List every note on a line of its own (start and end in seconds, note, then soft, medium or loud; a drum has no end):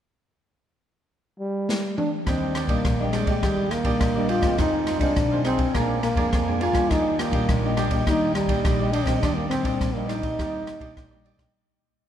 1.40 1.94 G3 medium
1.69 snare medium
1.98 2.11 D4 medium
1.98 mid tom medium
2.26 2.64 D#2 medium
2.26 2.82 D#3 soft
2.26 2.54 G3 soft
2.26 2.54 A#3 soft
2.26 2.70 C4 medium
2.26 2.53 D4 medium
2.26 2.55 D4 medium
2.26 2.54 G4 medium
2.26 2.55 D5 medium
2.26 2.54 D#5 medium
2.26 kick medium
2.26 cross-stick medium
2.26 ride soft
2.54 2.67 D4 soft
2.54 2.68 G4 soft
2.54 2.68 D5 soft
2.54 2.68 D#5 soft
2.54 cross-stick medium
2.54 ride soft
2.67 2.81 A#1 medium
2.67 2.94 G3 medium
2.67 3.14 A#3 medium
2.67 2.94 A#3 medium
2.67 2.78 D4 medium
2.67 2.94 D4 medium
2.67 2.79 G4 medium
2.67 2.79 D5 medium
2.67 2.79 D#5 medium
2.67 kick medium
2.67 ride soft
2.85 3.34 A#1 medium
2.85 3.40 A#2 medium
2.85 kick medium
2.85 cross-stick medium
2.85 ride soft
2.99 3.38 G3 medium
2.99 3.39 A#3 medium
2.99 3.39 D4 medium
2.99 3.13 G4 soft
2.99 3.13 D5 soft
2.99 3.13 D#5 soft
3.13 3.44 G#3 medium
3.13 3.27 D4 medium
3.13 3.27 G4 medium
3.13 3.25 D5 medium
3.13 3.26 D#5 medium
3.13 cross-stick medium
3.13 ride soft
3.26 3.42 G4 soft
3.26 3.41 D5 soft
3.26 3.41 D#5 soft
3.26 kick medium
3.26 ride soft
3.43 3.80 D#2 medium
3.43 3.98 D#3 soft
3.43 3.73 G3 medium
3.43 3.70 G3 soft
3.43 3.70 A#3 soft
3.43 3.71 D4 medium
3.43 3.84 G4 medium
3.43 3.84 D5 medium
3.43 3.84 D#5 medium
3.43 kick medium
3.43 cross-stick medium
3.43 ride soft
3.71 4.31 A#3 medium
3.71 cross-stick medium
3.71 ride soft
3.83 3.97 A#1 medium
3.83 4.10 G3 soft
3.83 4.10 A#3 medium
3.83 3.94 D4 medium
3.83 4.11 D4 medium
3.83 3.95 G4 medium
3.83 3.95 D5 medium
3.83 3.95 D#5 medium
3.83 kick medium
3.83 ride soft
4.00 4.38 A#1 medium
4.00 4.56 A#2 medium
4.00 4.14 D4 soft
4.00 4.14 G4 soft
4.00 4.14 D5 soft
4.00 4.15 D#5 medium
4.00 kick medium
4.00 cross-stick medium
4.00 ride medium
4.15 4.40 G3 medium
4.15 4.40 A#3 medium
4.15 4.41 D4 medium
4.15 4.28 G4 soft
4.15 4.29 D5 soft
4.15 4.29 D#5 soft
4.28 4.42 D4 medium
4.28 4.59 F4 medium
4.28 4.43 G4 medium
4.28 4.41 D5 medium
4.28 4.42 D#5 medium
4.28 ride soft
4.41 4.55 D#2 medium
4.41 4.97 D#3 medium
4.41 4.97 G#3 medium
4.41 4.97 C4 medium
4.41 4.58 G4 soft
4.41 4.57 D5 soft
4.41 4.57 D#5 soft
4.41 kick medium
4.41 cross-stick medium
4.41 ride soft
4.58 4.96 F2 medium
4.58 5.14 F2 soft
4.58 4.85 D#4 medium
4.58 5.02 D#4 medium
4.58 4.86 G#4 medium
4.58 4.87 C5 medium
4.58 4.88 F5 medium
4.58 kick medium
4.58 cross-stick medium
4.58 ride soft
4.87 4.99 D#4 soft
4.87 5.00 G#4 soft
4.87 5.00 C5 soft
4.87 5.01 F5 medium
4.87 cross-stick medium
4.87 ride soft
4.99 5.13 C2 medium
4.99 5.26 D#3 medium
4.99 5.26 G#3 medium
4.99 5.26 C4 medium
4.99 5.44 D4 medium
4.99 5.11 D#4 medium
4.99 5.11 G#4 medium
4.99 5.11 C5 medium
4.99 5.11 F5 medium
4.99 kick medium
4.99 ride soft
5.16 5.66 B1 medium
5.16 kick medium
5.16 cross-stick medium
5.16 ride soft
5.31 5.71 D#3 medium
5.31 5.71 G#3 medium
5.31 5.71 C4 medium
5.31 5.44 G#4 soft
5.31 5.45 C5 soft
5.31 5.45 F5 soft
5.44 5.76 C4 medium
5.44 5.58 D#4 medium
5.44 5.59 G#4 medium
5.44 5.58 C5 medium
5.44 5.57 F5 medium
5.44 cross-stick medium
5.44 ride soft
5.58 5.74 G#4 soft
5.58 5.73 C5 soft
5.58 5.72 F5 soft
5.58 kick medium
5.58 ride soft
5.74 6.12 A#1 medium
5.74 6.30 A#2 soft
5.74 6.14 F3 soft
5.74 6.14 G#3 soft
5.74 6.03 A#3 medium
5.74 6.15 D4 medium
5.74 6.14 D4 medium
5.74 6.16 A#4 medium
5.74 6.16 D5 medium
5.74 6.17 G#5 medium
5.74 kick medium
5.74 cross-stick medium
5.74 ride soft
6.03 6.63 A#3 medium
6.03 cross-stick medium
6.03 ride soft
6.15 6.29 F2 medium
6.15 6.42 F3 medium
6.15 6.42 G#3 medium
6.15 6.26 D4 medium
6.15 6.42 D4 medium
6.15 6.27 A#4 medium
6.15 6.27 D5 medium
6.15 6.27 G#5 medium
6.15 kick medium
6.15 ride soft
6.32 6.88 F2 medium
6.32 6.70 F2 medium
6.32 6.46 D4 soft
6.32 6.46 A#4 soft
6.32 6.47 D5 soft
6.32 6.46 G#5 soft
6.32 kick medium
6.32 cross-stick medium
6.32 ride soft
6.48 6.72 F3 medium
6.48 6.72 G#3 medium
6.48 6.72 D4 medium
6.48 6.60 A#4 soft
6.48 6.61 D5 soft
6.48 6.61 G#5 soft
6.61 6.75 D4 medium
6.61 6.93 F4 medium
6.61 6.75 A#4 medium
6.61 6.75 D5 medium
6.61 6.73 G#5 medium
6.61 ride soft
6.73 6.87 F2 medium
6.73 7.29 G3 medium
6.73 7.29 A#3 medium
6.73 7.29 D4 medium
6.73 6.90 A#4 soft
6.73 6.89 D5 soft
6.73 6.89 G#5 soft
6.73 kick medium
6.73 cross-stick medium
6.73 ride soft
6.90 7.28 D#2 medium
6.90 7.46 D#3 soft
6.90 7.18 D4 medium
6.90 7.21 D#4 medium
6.90 7.18 G4 medium
6.90 7.20 D5 medium
6.90 7.19 D#5 medium
6.90 kick medium
6.90 cross-stick medium
6.90 ride soft
7.19 7.78 A#3 medium
7.19 7.32 D4 soft
7.19 7.32 G4 soft
7.19 7.33 D5 medium
7.19 7.32 D#5 soft
7.19 cross-stick medium
7.19 ride soft
7.31 7.45 A#1 medium
7.31 7.58 G3 medium
7.31 7.58 A#3 medium
7.31 7.43 D4 medium
7.31 7.58 D4 medium
7.31 7.43 G4 medium
7.31 7.43 D5 medium
7.31 7.43 D#5 medium
7.31 kick medium
7.31 ride soft
7.49 7.98 A#1 loud
7.49 8.04 A#2 medium
7.49 kick medium
7.49 cross-stick medium
7.49 ride soft
7.63 7.88 G3 medium
7.63 7.88 A#3 medium
7.63 7.88 D4 medium
7.63 7.76 G4 soft
7.63 7.77 D5 soft
7.63 7.77 D#5 soft
7.77 7.91 D4 medium
7.77 7.91 G4 medium
7.77 7.89 D5 medium
7.77 7.90 D#5 medium
7.77 cross-stick medium
7.77 ride soft
7.90 8.01 G3 medium
7.90 8.02 A#3 medium
7.90 8.02 D4 medium
7.90 8.06 G4 soft
7.90 8.05 D5 soft
7.90 8.05 D#5 soft
7.90 kick medium
7.90 ride soft
8.07 8.44 D#2 medium
8.07 8.62 D#3 medium
8.07 8.34 G3 medium
8.07 8.34 A#3 soft
8.07 8.34 D4 medium
8.07 8.34 D#4 loud
8.07 8.48 G4 medium
8.07 8.48 D5 medium
8.07 8.48 D#5 medium
8.07 kick medium
8.07 cross-stick medium
8.07 ride soft
8.35 8.93 G3 medium
8.35 cross-stick medium
8.35 ride soft
8.47 8.61 A#1 medium
8.47 8.74 G3 medium
8.47 8.74 A#3 medium
8.47 8.58 D4 medium
8.47 8.74 D4 medium
8.47 8.59 G4 medium
8.47 8.59 D5 medium
8.47 8.59 D#5 medium
8.47 kick medium
8.47 ride soft
8.64 9.02 A#1 medium
8.64 9.20 A#2 medium
8.64 8.78 D4 soft
8.64 8.79 G4 soft
8.64 8.78 D5 soft
8.64 8.79 D#5 medium
8.64 kick medium
8.64 cross-stick medium
8.64 ride soft
8.80 9.04 G3 medium
8.80 9.04 A#3 soft
8.80 9.04 D4 medium
8.80 8.93 G4 soft
8.80 8.93 D5 soft
8.80 8.93 D#5 soft
8.92 9.07 D4 medium
8.92 9.07 G4 medium
8.92 9.05 D5 medium
8.92 9.06 D#5 medium
8.92 ride soft
9.05 9.19 A#1 medium
9.05 9.17 G3 medium
9.05 9.17 A#3 medium
9.05 9.22 C4 medium
9.05 9.18 D4 medium
9.05 9.22 G4 soft
9.05 9.21 D5 soft
9.05 9.21 D#5 soft
9.05 kick medium
9.05 cross-stick medium
9.05 ride soft
9.22 9.60 D#2 medium
9.22 9.78 D#3 medium
9.22 9.61 G3 soft
9.22 9.62 A#3 soft
9.22 9.38 D4 medium
9.22 9.49 D4 medium
9.22 9.62 D4 medium
9.22 9.50 G4 medium
9.22 9.51 D5 medium
9.22 9.51 D#5 medium
9.22 kick medium
9.22 cross-stick medium
9.22 ride soft
9.37 9.49 A#3 medium
9.50 9.96 C4 medium
9.50 9.63 D4 soft
9.50 9.64 G4 soft
9.50 9.64 D5 medium
9.50 9.64 D#5 soft
9.50 cross-stick medium
9.50 ride soft
9.63 9.77 A#1 medium
9.63 9.90 G3 medium
9.63 9.90 A#3 medium
9.63 9.74 D4 medium
9.63 9.90 D4 medium
9.63 9.75 G4 medium
9.63 9.75 D5 medium
9.63 9.75 D#5 medium
9.63 kick medium
9.63 ride soft
9.81 10.30 A#1 medium
9.81 10.36 A#2 medium
9.81 kick medium
9.81 cross-stick medium
9.81 ride soft
9.94 10.34 G3 medium
9.94 10.10 A#3 medium
9.94 10.34 A#3 medium
9.94 10.35 D4 medium
9.94 10.08 G4 soft
9.94 10.08 D5 soft
9.94 10.09 D#5 soft
10.08 10.22 D4 medium
10.08 11.25 D#4 medium
10.08 10.23 G4 medium
10.08 10.21 D5 medium
10.08 10.22 D#5 medium
10.08 cross-stick medium
10.08 ride soft
10.22 10.38 G4 soft
10.22 10.36 D5 soft
10.22 10.37 D#5 soft
10.22 kick medium
10.22 ride soft
10.39 10.76 D#2 medium
10.39 10.94 D#3 soft
10.39 10.78 G3 soft
10.39 10.78 A#3 soft
10.39 10.79 G4 medium
10.39 10.80 D5 medium
10.39 10.80 D#5 medium
10.39 kick medium
10.39 cross-stick medium
10.39 ride soft
10.67 cross-stick medium
10.67 ride soft
10.79 10.93 A#1 medium
10.79 11.06 G3 medium
10.79 11.06 A#3 medium
10.79 10.90 D4 medium
10.79 11.06 D4 medium
10.79 10.90 G4 medium
10.79 10.91 D5 medium
10.79 10.91 D#5 medium
10.79 kick medium
10.79 ride soft
10.96 11.34 A#1 medium
10.96 11.52 A#2 medium
10.96 11.10 D4 soft
10.96 11.10 G4 soft
10.96 11.10 D5 soft
10.96 11.10 D#5 soft
10.96 kick medium
10.96 cross-stick medium
10.96 ride soft
11.11 11.36 G3 medium
11.11 11.36 A#3 medium
11.11 11.36 D4 medium
11.11 11.24 G4 soft
11.11 11.24 D5 soft
11.11 11.24 D#5 soft
11.24 11.38 D4 medium
11.24 11.39 G4 medium
11.24 11.37 D5 medium
11.24 11.38 D#5 medium
11.24 ride soft
11.37 11.51 A#1 medium
11.37 11.49 G3 medium
11.37 11.50 A#3 medium
11.37 11.50 D4 medium
11.37 11.53 G4 soft
11.37 11.52 D5 soft
11.37 11.53 D#5 soft
11.37 kick medium
11.37 cross-stick medium
11.37 ride soft